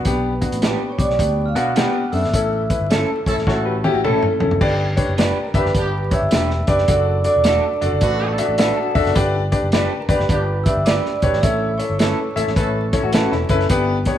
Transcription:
0.05 B1 B3 D4 G4 B5, kick, closed hi-hat
0.09 B4
0.41 B3 D4 F#4, kick, closed hi-hat
0.52 A1, closed hi-hat
0.62 B3 D4 G4 B4, snare, closed hi-hat
0.90 C#5 C#6
0.98 B1 B3 D4 G4 D5 D6, kick, closed hi-hat
1.09 B1, snare
1.19 D2 B3 D4 G4, kick, closed hi-hat
1.46 F5 F6
1.55 B2 B3 D4 F#4 F#5 F#6, closed hi-hat
1.76 B3 D4 G4 B4, snare, closed hi-hat
2.12 F#2 B3 D4 A4 E5 E6, open hi-hat
2.23 G#1, snare
2.33 A1 C#4 E4 A4, kick, closed hi-hat
2.70 C#4 E4 B4, kick, closed hi-hat
2.80 G1
2.90 A3 C#4 E4 A4, snare, closed hi-hat
3.26 A1 C#4 E4 A4, kick, closed hi-hat
3.37 A1, snare
3.47 A1 C#4 E4 F#4 A4 C#5, kick, snare
3.65 G4 B4
3.84 C#4 E4 F#4 G4 A4, high tom
3.94 A1 F#4
4.04 A3 C#4 E4 A4, mid tom
4.23 A3 C#4, mid tom
4.40 E1 C#4 E4 A4, floor tom
4.50 F#1, floor tom
4.61 G1 D4 G4 B4 D5, kick, crash
4.97 D4 G4 B4 C#5, kick, closed hi-hat
5.08 F#1
5.18 B3 D4 G4 B4 D5, snare, closed hi-hat
5.45 A#4 A#5
5.54 G1 B3 D4 G4 B4 E5 B5, kick, closed hi-hat
5.65 G1, snare
5.74 G1 B3 D4 G4 B4 D5, kick, closed hi-hat
6.11 D4 G4 B4 C#5 E5 E6, kick, closed hi-hat
6.22 G1
6.31 E1 B3 D4 G4 B4 D5, snare, closed hi-hat
6.50 snare
6.67 F#1 D4 G4 B4 D5 D6, kick, closed hi-hat
6.78 snare
6.88 F#1 D4 F#4 A4 D5, kick, closed hi-hat
7.24 D4 F#4 A4 D5 D6, closed hi-hat
7.36 E1
7.44 A3 D4 F#4 A4 E5, snare, closed hi-hat
7.81 F#1 A3 D4 F#4 A4 D5, closed hi-hat
7.92 F#1
8.01 A1 A3 D4 F#4 A4 B4, kick, closed hi-hat
8.38 D4 F#4 A4 E5, closed hi-hat
8.49 A1
8.58 A3 D4 F#4 A4 B4 E5, snare, closed hi-hat
8.77 F#4 A4
8.95 E1 D4 F#4 A4 E5, kick, open hi-hat
9.05 F#1 B3 D4, snare
9.15 G1 D4 G4 B4 D5, kick, closed hi-hat
9.52 D4 G4 B4 D5, kick, closed hi-hat
9.62 F#1
9.72 B3 D4 G4 B4 D5, snare, closed hi-hat
10.00 A#4 A#5
10.08 G1 B3 D4 G4 B4 D5 B5, kick, closed hi-hat
10.19 G1, snare
10.29 G1 B3 D4 G4 B4 D5, kick, closed hi-hat
10.64 D4 G4 B4 D5 E5 E6, kick, closed hi-hat
10.75 G1
10.85 B3 D4 G4 B4 D5 D6, snare, closed hi-hat
11.05 snare
11.22 E1 D4 G4 B4 C#5, kick, closed hi-hat
11.33 G#1, snare
11.41 A1 C#4 E4 A4 C#5 E5 E6, kick, closed hi-hat
11.78 C#4 E4 A4 C#5 E5 C#6, closed hi-hat
11.90 G1
11.99 A3 C#4 E4 A4 B4, snare, closed hi-hat
12.35 A1 C#4 E4 A4 E5, closed hi-hat
12.47 A1, snare
12.56 A1 C#4 E4 A4 B4, kick, closed hi-hat
12.93 C#4 E4 A4 C#5, kick, closed hi-hat
13.03 A1 F#4
13.12 A3 C#4 E4 A4 B4, snare, closed hi-hat
13.32 E1 C#4 E4, snare
13.49 F#1 C#4 E4 A4 B4, kick, closed hi-hat
13.60 snare
13.70 G1 B3 D4 G4 B4, kick, closed hi-hat
14.05 B3 D4 G4 C#5, kick, closed hi-hat

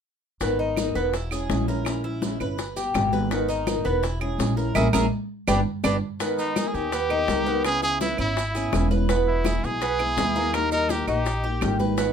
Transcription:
0.40 G#1 D#3 G#3 B3 D#4 A#4, high bongo, high conga, maracas
0.59 D#4, high conga
0.77 G#3 B3 D#4 A#4, high bongo, high conga, claves, maracas
0.94 E1 B3 D#4 A#4, maracas
1.13 E4, muted nylon-string guitar stroke, high bongo, high conga, maracas
1.31 G#3 C#4 E4 G#4, high conga, claves, maracas
1.49 A#1 B2 E3 G#3 C#4 E4, high bongo, low bongo, high conga, maracas
1.68 E3 G#3 C#4 E4 A#4, maracas
1.85 E3 G#3 C#4 E4, high bongo, high conga, claves, maracas
2.04 E4, high bongo, high conga
2.22 E3 G#3 C#4 E4, high bongo, high conga, maracas
2.40 G1 G#3 C#4 E4 B4, high bongo, high conga, claves, maracas
2.58 muted nylon-string guitar stroke, high bongo, high conga, maracas
2.76 G3 B3 G4, high bongo, high conga, maracas
2.94 G#1 B2 D3 G3 B3 G4, high bongo, low bongo, high conga, claves, maracas
3.12 D3 G3 B3 G4 B4, high conga, maracas
3.31 D#3 G#3 B3 D#4 A#4, high bongo, high conga, maracas
3.49 D#4, high conga, maracas
3.66 G#3 B3 D#4 A#4, high bongo, high conga, claves, maracas
3.84 E1 B3 D#4 A#4, maracas
4.03 E4, muted nylon-string guitar stroke, high bongo, high conga, maracas
4.20 G#3 C#4 E4 G#4, high conga, claves
4.38 A#1 B2 E3 G#3 C#4 E4, high bongo, low bongo, high conga, maracas
4.56 E3 G#3 C#4 E4 A#4, maracas
4.74 A#1 G#3 A#3 C#4 E4 G#4 A#4, low bongo, high conga, claves, maracas
4.93 A#1 G#3 A#3 C#4 E4 G#4 A#4, low bongo, high conga, claves, maracas
5.48 G1 G3 B3 D4 G4 B4, low bongo, high conga, claves, maracas
5.84 G1 G3 B3 D4 G4 B4, low bongo, high conga, claves, maracas
6.19 D#3 G#3 B3 D#4 A#4, high bongo, high conga, maracas
6.38 D#4, high conga, maracas
6.56 G#3 B3 D#4 G#4 A#4, high bongo, high conga, claves, maracas
6.68 G#4
6.73 D#2 B3 D#4 G4 A#4, maracas
6.92 B3, muted nylon-string guitar stroke, high bongo, high conga, maracas
7.09 B3 D#4 A#4, high conga, claves
7.28 C#2 D#3 G#3 B3 D#4 A#4, high bongo, low bongo, high conga, maracas
7.46 G#3 B3 D#4 A#4, maracas
7.64 C#3 E3 B3 C#4 E4 G#4, high bongo, high conga, claves, maracas
7.82 E4 G#4, high bongo, high conga, maracas
8.00 E3 B3 C#4 E4 B4, high bongo, high conga, maracas
8.18 G#1 B3 C#4 E4, high bongo, high conga, claves, maracas
8.36 muted nylon-string guitar stroke, high bongo, high conga, maracas
8.54 B3 C#4 E4 G#4, high bongo, high conga, maracas
8.72 E1 C#3 E3 B3 C#4 E4, high bongo, low bongo, high conga, claves, maracas
8.90 E3 B3 C#4 E4 B4, high conga, maracas
9.08 B2 E3 G#3 B3 E4, high bongo, high conga, maracas
9.26 E4, high conga
9.45 E3 G#3 B3 E4 G#4, high bongo, high conga, claves, maracas
9.63 B1 G#3 B3 E4 G#4, maracas
9.81 B3, muted nylon-string guitar stroke, high bongo, high conga, maracas
9.99 G#3 B3 E4, high conga, claves
10.17 D#2 B2 E3 G#3 B3 E4, high bongo, low bongo, high conga, maracas
10.36 E3 G#3 A#3 B3 E4, maracas
10.53 D#3 G3 A#3 D#4 G4 A#4, high bongo, high conga, claves, maracas
10.71 D#4 A#4, high bongo, high conga, maracas
10.89 G3 A#3 D#4 G4 A#4, high bongo, high conga, maracas
11.07 A#1 A#3 D#4 G4, high bongo, high conga, claves, maracas
11.25 muted nylon-string guitar stroke, high bongo, high conga, maracas
11.43 A#3 D#4 G4, high bongo, high conga
11.61 G#1 D#3 G3 A#3 D#4 G4, high bongo, low bongo, high conga, claves, maracas
11.80 G3 A#3 D#4 G4 B4, high conga, maracas
11.98 D#3 G#3 B3 D#4 G#4, high bongo, high conga, maracas

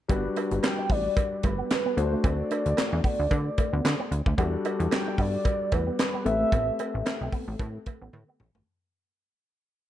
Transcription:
0.08 G1 G3 B3 D4 F#4 B4, kick, closed hi-hat, cowbell
0.36 D4, closed hi-hat, cowbell
0.51 G1, muted clean electric guitar stroke, closed hi-hat
0.63 G5, snare, clap, closed hi-hat, cowbell
0.78 D4
0.90 A1 B3 D5, kick, open hi-hat
1.17 muted clean electric guitar stroke, kick, closed hi-hat, cowbell
1.43 G1 A3 B4, kick, closed hi-hat, cowbell
1.59 B3
1.70 B4, snare, clap, closed hi-hat, cowbell
1.85 B3
1.96 D2 A3 D4 F#4 C5, muted clean electric guitar stroke, closed hi-hat
2.13 A3
2.24 D2 C4 D5, kick, closed hi-hat, cowbell
2.51 D4, closed hi-hat, cowbell
2.66 D2, muted clean electric guitar stroke, closed hi-hat
2.77 snare, clap, closed hi-hat, cowbell
2.93 E2 D4
3.04 B3 D5, kick, open hi-hat
3.19 D2
3.31 D3, muted clean electric guitar stroke, kick, closed hi-hat, cowbell
3.58 A3, kick, closed hi-hat, cowbell
3.73 D2 B3
3.85 D3, snare, clap, closed hi-hat, cowbell
3.99 B3
4.11 D2, muted clean electric guitar stroke, closed hi-hat
4.26 D2 A3, kick
4.38 E2 G3 B3 D4 F#4 A4, kick, closed hi-hat, cowbell
4.65 D4, closed hi-hat, cowbell
4.80 E2, muted clean electric guitar stroke, closed hi-hat
4.91 G5, snare, clap, closed hi-hat, cowbell
5.07 D4
5.18 G2 B3 D5, kick, open hi-hat
5.45 muted clean electric guitar stroke, kick, closed hi-hat, cowbell
5.72 E2 A3 B4, kick, closed hi-hat, cowbell
5.87 B3
5.99 B4, snare, clap, closed hi-hat, cowbell
6.14 B3
6.25 A1 A3 C4 G4 B4 E5, muted clean electric guitar stroke, closed hi-hat
6.41 A3
6.52 A1 B3, kick, closed hi-hat, cowbell
6.79 C4, closed hi-hat, cowbell
6.94 A1, muted clean electric guitar stroke
7.06 snare, clap, closed hi-hat, cowbell
7.21 B1 C4
7.32 B3, kick, open hi-hat
7.48 A1
7.59 A2, muted clean electric guitar stroke, kick, closed hi-hat, cowbell
7.86 A3, kick, closed hi-hat, cowbell
8.01 A1 B3
8.13 A2, high tom, cowbell
8.28 B3
8.40 A1, muted clean electric guitar stroke, mid tom
8.55 G1 A3, floor tom

